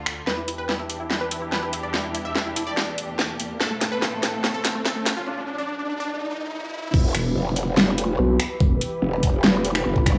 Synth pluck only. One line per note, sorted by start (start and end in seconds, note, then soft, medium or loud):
0.00 0.19 D4 medium
0.27 0.35 B4 loud
0.37 0.46 E4 medium
0.48 0.56 E4 medium
0.58 0.67 B4 medium
0.69 0.77 E4 medium
0.79 0.87 E4 medium
1.00 1.08 E4 medium
1.10 1.19 E4 medium
1.21 1.29 B4 medium
1.31 1.39 E4 medium
1.42 1.50 E4 medium
1.52 1.60 B4 loud
1.63 1.71 E4 medium
1.73 1.81 E4 medium
1.83 1.92 D5 medium
1.94 2.02 E4 medium
2.04 2.12 E4 medium
2.15 2.23 E4 medium
2.25 2.33 E5 medium
2.35 2.44 E4 medium
2.46 2.54 E4 medium
2.56 2.64 E4 medium
2.67 3.52 D5 loud
3.60 3.69 A4 loud
3.71 3.79 A3 medium
3.81 3.89 A3 medium
3.92 4.00 B4 medium
4.02 4.10 A3 medium
4.13 4.21 A3 medium
4.33 4.42 A3 medium
4.44 4.52 A3 medium
4.54 4.62 A4 medium
4.65 4.73 A3 medium
4.75 4.83 A3 medium
4.85 4.94 A4 loud
4.96 5.04 A3 medium
5.06 5.14 A3 medium
5.17 5.25 F4 medium
5.27 5.35 D4 medium
5.38 5.46 D4 medium
5.48 5.56 D4 medium
5.58 5.67 D4 medium
5.69 5.77 D4 medium
5.79 5.87 D4 medium
5.90 5.98 D4 medium
6.00 6.85 D4 loud